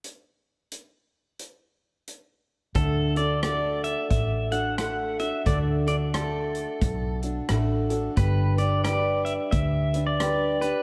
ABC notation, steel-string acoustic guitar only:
X:1
M:4/4
L:1/8
Q:"Swing" 1/4=88
K:D
V:1 name="Steel-string acoustic guitar"
z8 | [D,A,DFA] [DFA] [A,DFA]3 [DFA] [A,DFA] [DFA] | [D,A,DFA] [DFA] [A,DFA]3 [DFA] [A,DFA] [DFA] | [G,DGB] [DGB] [G,DGB]3 [DGB] [G,DGB] [DGB] |]